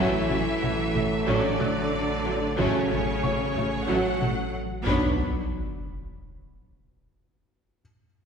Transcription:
Already playing: A1 E3 F#3 A3 C#4 E4 E5
0.30 A1 F#3 A3 C#4, taiko mid
0.62 A1 F#3 A3 F#4, taiko mid
0.95 A1 F#3 A3, taiko mid
1.27 A1 D3 F#3 A3 C#4 D5
1.60 A1 F#3 A3 F#6, taiko mid
2.25 A1 F#3 A3
2.57 A1 C#3 F#3 A3 C#4 C#5, taiko
2.90 A1 F#3 A3 C#4, taiko mid
3.23 A1 F#3 A3 F#4 C#6, taiko mid
3.55 A1 F#3 A3, taiko mid
3.88 A1 F#3 A3 C#4 F#4 F#5
4.20 A1 F#3 A3 C#4, taiko mid
4.86 B1 F#3 B3 D4 C#5 B5, taiko, sub drop

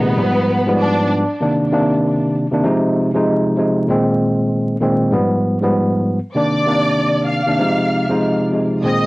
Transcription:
Already playing: A#2 C3 D#3 G#3 B3 B4
0.16 G#2 F3 G3 B3
0.66 G#2 F3 G3 B3
0.79 D4 D5
1.40 C3 D#3 A#3 D4
1.71 C3 D#3 A#3 D4
2.51 C3 D#3 A#3 D4
2.63 C3 F3 G#3 D#4
3.14 C3 F3 G#3 D#4
3.57 C3 F3 G#3 D#4
3.88 A#2 D#3 G#3 C4
4.80 A#2 D#3 G#3 C4
5.11 G#2 F3 G3 B3
5.61 G#2 F3 G3 B3
6.34 C3 D#3 A#3 D4 D5 D6
6.66 C3 D#3 A#3 D4
7.28 F5 F6
7.46 C3 D#3 A#3 D4
7.58 C3 F3 G#3 D#4
8.09 C3 F3 G#3 D#4
8.52 C3 F3 G#3 D#4
8.82 A#2 D#3 G#3 C4 D#5 D#6

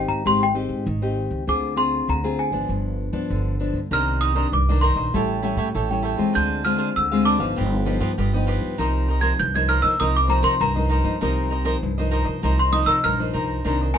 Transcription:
Already playing: D#3 C4 D#4 G4 G5
0.08 G#2 A#5
0.25 G#1 G#3 C4 D#4 G4 C6
0.43 G5
0.54 C4 D#4 G4
0.69 G#2
0.86 G#1 D#3
1.02 C4 D#4 G4
1.30 C#2
1.47 D2 D3 C4 F4 G#4 D6
1.76 C4 F4 G#4 C6
2.07 D2 D3 A#5
2.23 C4 F4 G#4
2.39 G#5
2.52 G#1 F3 B3 D4
2.69 G1 G2
3.13 G2 F3 B3 D4
3.30 G1 D3
3.60 F3 B3 D4
3.73 G2
3.91 C2 C3 D#3 A#3 D4 D#4 A#4 C5 D#5 F6
4.21 D#4 A#4 C5 D#5 D#6
4.35 D#3 A#3 D4 D#4 A#4 C5 D#5
4.52 C2 G2 D6
4.69 D#3 A#3 D4 A#4 C5 D#5
4.81 D#4 A#4 C5 D#5 C6
4.96 A#1 A#4 C5 D#5
5.13 A1 A2 G3 C#4 E4 A4 C#5 G5
5.42 G3 C#4 E4 A4 C#5 G5
5.56 A2 E4 A4 C#5 G5
5.74 A1 E3 E4 A4 C#5 G5
5.90 G3 C#4 E4 A4 C#5 G5
6.02 E4 A4 C#5 G5
6.17 E2 G#3 C4 F4
6.33 D2 D3 D4 G#4 C5 F5 G6
6.64 G#3 C4 D4 F4 G#4 C5 F5 F6
6.78 D4 G#4 C5 F5
6.96 D2 D3 E6
7.11 G#3 C4 F4 G#4 C5 F5
7.25 D4 G#4 C5 F5 D6
7.40 G#1 F3 B3 D#4 G#4 C5 F5
7.56 G1 G2 F4 G4 B4 D#5
7.85 F3 B3 D#4 F4 G4 B4 D#5
8.00 G2 F4 G4 B4 D#5
8.17 G1 G2 F4 G4 B4 D#5
8.33 F3 B3 D#4 G4 B4 D#5
8.46 F4 G4 B4 D#5
8.61 G2
8.78 C2 C3 F3 A#3 D#4 A#4 C5 D#5
9.08 D#4 A#4 C5 D#5
9.21 F3 A#3 D#4 A#4 C5 D#5 G#6
9.39 C2 G2 G6
9.54 F3 A#3 D#4 A#4 C5 D#5 G#6
9.68 D#4 A#4 C5 D#5 F6
9.82 C3 F3 A#3 D#4 A#4 C5 D#5 E6
9.99 C2 C3 F3 A#3 D#4 A#4 C5 D#5 D#6
10.16 D6
10.28 F3 A#3 D#4 A#4 C5 D#5 A#5
10.43 C3 D#4 A#4 C5 D#5 C6
10.60 C2 G2 D#4 A#4 C5 D#5 A#5
10.76 F3 A#3 D#4 A#4 C5 D#5
10.89 D#4 A#4 C5 D#5
11.03 G2 F3 A#3 D#4
11.21 C2 C3 F3 A#3 D#4 A#4 C5 D#5
11.50 D#4 A#4 C5 D#5
11.64 F3 A#3 D#4 A#4 C5 D#5
11.82 C2 G2
11.98 F3 A#3 D#4 A#4 C5 D#5
12.11 D#4 A#4 C5 D#5
12.25 C3 A#4 C5 D#5
12.42 C2 C3 F3 A#3 D#4 A#4 C5 D#5
12.59 C6
12.71 F3 A#3 D#4 A#4 C5 D#5 D#6
12.86 C3 D#4 A#4 C5 D#5 E6
13.03 A#1 G2 D#4 A#4 C5 D#5 F6
13.19 F3 A#3 D#4 A#4 C5 D#5
13.33 C2 D#4 A#4 C5 D#5
13.64 C2 C3 D#3 A#3 D4 D#4 A#4 C5 D#5
13.81 A#4 C5 D#5
13.93 D#3 A#3 D4 D#4 A#4 G#5

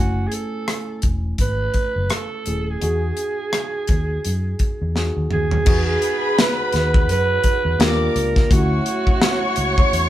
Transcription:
Already playing: F#1 A3 C#4 E4
0.00 F#4 G#5
0.28 G#4
0.32 A4, closed hi-hat
0.68 cross-stick, closed hi-hat
1.02 E1, kick, closed hi-hat
1.38 G#1 B4, kick, closed hi-hat
1.74 kick, closed hi-hat
1.96 F#1
2.10 A4, cross-stick, closed hi-hat
2.46 D#1 A3 C#4 E4 G#4, closed hi-hat
2.70 G#4
2.80 E2 B3 D#4 F#4 G#4, closed hi-hat
3.17 closed hi-hat
3.53 cross-stick, closed hi-hat
3.87 D#2, kick, closed hi-hat
4.25 F#2, closed hi-hat
4.59 kick, closed hi-hat
4.82 E2
4.95 B3 D#4 F#4 G#4, snare
5.17 D#2
5.31 D#2 G#4, mid tom
5.51 floor tom
5.65 E2 B3 D#4 F#4 G#4 B4 B5, kick, crash
6.02 closed hi-hat
6.39 B4, snare, closed hi-hat
6.72 D#2, snare, closed hi-hat
6.94 kick
7.09 F#2 B4, closed hi-hat
7.44 kick, closed hi-hat
7.65 E2
7.79 D#2 G3 A#3 D4 F4 G4 A#4 D5 D6, snare, closed hi-hat
8.16 C#2, closed hi-hat
8.36 kick, snare
8.50 D2 C#3 F#3 A3 C#4 E4 F#4 C#5 C#6, kick, closed hi-hat
8.86 closed hi-hat
9.07 kick
9.22 snare, closed hi-hat
9.56 C#2, closed hi-hat
9.78 kick
9.93 E2, closed hi-hat

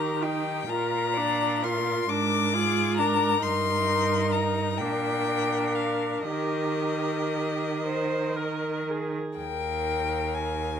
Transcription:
Already playing: D#3 G4 A#4 A#5
0.21 D#4 G4 G5
0.69 A#2 F4 A#4 A#5
1.14 D4 D5
1.63 F4 A#4 C6
2.08 G#2 D4 A#4 D6
2.53 F4 G#4
2.97 D4 A#4 A#5
3.43 G2 D#4 A#4 C6
4.32 A#5
4.78 A#2 D4 A#4 G5
5.75 F5
6.26 D#3 G4 D#5
6.30 A#4
7.85 C5
8.36 A#4
8.89 G#4
9.37 D#2 A#4 G5
10.34 G#5

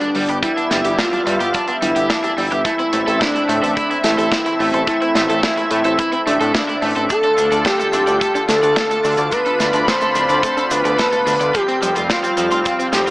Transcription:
Already playing: G3 B3 D4
0.01 G3 D4, closed hi-hat
0.15 G1 G3, open hi-hat
0.29 G1 G4 B4, closed hi-hat
0.43 G3 E4 E5, kick, closed hi-hat
0.57 B3 D4, closed hi-hat
0.71 G1 G3, snare, closed hi-hat
0.84 G1 G4, closed hi-hat
0.99 G3 D4 F4, kick, snare, closed hi-hat
1.13 G3 D4, closed hi-hat
1.27 G2 G3, closed hi-hat
1.40 G1 G4 B4, closed hi-hat
1.54 G3 D4, kick, closed hi-hat
1.68 B3 D4, closed hi-hat
1.82 G1 G3 E4, closed hi-hat
1.96 G1 G4, closed hi-hat
2.10 G3 D4, kick, snare, closed hi-hat
2.24 G3 D4, closed hi-hat
2.38 G1 G3, open hi-hat
2.52 G1 G4 B4, closed hi-hat
2.65 A3 C4 E4, kick, closed hi-hat
2.79 C4 E4, closed hi-hat
2.93 A1 A3, closed hi-hat
3.07 A1 A4, closed hi-hat
3.21 A3 D4 E4, kick, snare, closed hi-hat
3.35 A3 E4, closed hi-hat
3.49 A2 A3, closed hi-hat
3.63 A1 A4 C5, closed hi-hat
3.77 A3 E4, kick, closed hi-hat
3.90 C4 E4, closed hi-hat
4.04 A1 A3 E4, snare, closed hi-hat
4.18 A1 A4, closed hi-hat
4.32 A3 E4, kick, snare, closed hi-hat
4.46 A3 E4, closed hi-hat
4.60 A1 A3, open hi-hat
4.74 A1 A4 C5, closed hi-hat
4.87 A3 E4, kick, closed hi-hat
5.02 C4 E4, closed hi-hat
5.15 A1 A3, snare, closed hi-hat
5.29 A1 A4, closed hi-hat
5.43 A3 E4, kick, snare, closed hi-hat
5.57 A3 E4, closed hi-hat
5.71 A2 A3, closed hi-hat
5.84 A1 A4 C5, closed hi-hat
5.99 A3 E4, kick, closed hi-hat
6.12 C4 E4, closed hi-hat
6.27 A1 A3 D4, closed hi-hat
6.41 A2 A4, closed hi-hat
6.54 A3 E4, kick, snare, closed hi-hat
6.68 A3 E4, closed hi-hat
6.82 A1 A3, open hi-hat
6.96 A1 A4 C5, closed hi-hat
7.10 D3 A3 D4 F4 A4, kick, closed hi-hat, cabasa
7.23 D4 A4, closed hi-hat
7.38 D2 A3 D4, closed hi-hat, cabasa
7.52 D2 A4 D5, closed hi-hat, cabasa
7.65 A3 G4 A4, kick, snare, closed hi-hat, cabasa
7.79 A3 A4, closed hi-hat, cabasa
7.93 D1 A3 D4, closed hi-hat, cabasa
8.07 D2 D5, closed hi-hat, cabasa
8.21 A3 A4, kick, closed hi-hat, cabasa
8.35 D4 A4, closed hi-hat, cabasa
8.49 D2 A3 D4 A4, snare, closed hi-hat, cabasa
8.63 D2 A4 D5, closed hi-hat, cabasa
8.76 A3 A4, kick, snare, closed hi-hat, cabasa
8.91 A3 A4, closed hi-hat, cabasa
9.04 D2 A3 D4, open hi-hat, cabasa
9.17 D2 D5, closed hi-hat, cabasa
9.31 A3 D4 B4 B5, kick, closed hi-hat, cabasa
9.46 D4 A4, closed hi-hat
9.60 D2 A3 D4, snare, closed hi-hat, cabasa
9.73 D2 A4 D5, closed hi-hat, cabasa
9.88 A3 A4 C5, kick, snare, closed hi-hat, cabasa
10.01 A3 A4, closed hi-hat, cabasa
10.15 D1 A3 D4, closed hi-hat, cabasa
10.29 D2 D5, closed hi-hat, cabasa
10.43 A3 A4, kick, closed hi-hat, cabasa
10.57 D4 A4, closed hi-hat, cabasa
10.71 D2 A3 D4 B4, closed hi-hat, cabasa
10.85 D2 A4 D5, closed hi-hat, cabasa
10.99 A3 A4, kick, snare, closed hi-hat, cabasa
11.12 A3 A4, closed hi-hat, cabasa
11.27 D2 A3 D4, open hi-hat, cabasa
11.40 D2 D5, closed hi-hat, cabasa
11.54 F3 G3 C4 G4, kick, closed hi-hat, cabasa
11.68 C4, closed hi-hat
11.82 F1 F3 G3, closed hi-hat, cabasa
11.96 F1 F4 G4, closed hi-hat, cabasa
12.10 G3 C4 F4, kick, snare, closed hi-hat, cabasa
12.24 G3 C4, closed hi-hat, cabasa
12.37 F2 F3 G3, closed hi-hat, cabasa
12.51 F1 F4 C5, closed hi-hat, cabasa
12.65 G3 C4, kick, closed hi-hat, cabasa
12.79 C4, closed hi-hat, cabasa
12.93 F1 F3 G3 G4, snare, closed hi-hat, cabasa
13.07 F1 F4 G4, closed hi-hat

